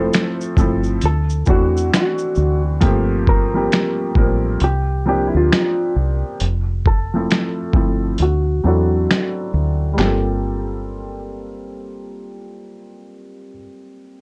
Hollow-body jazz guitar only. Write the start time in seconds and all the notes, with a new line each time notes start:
Already playing: C5
1.05 A4
1.50 F#4
1.95 F#4
3.29 A#4
4.64 G4
5.09 G4
5.27 E4
5.37 F4
6.87 A4
8.23 F#4
8.68 F#4
10.00 G4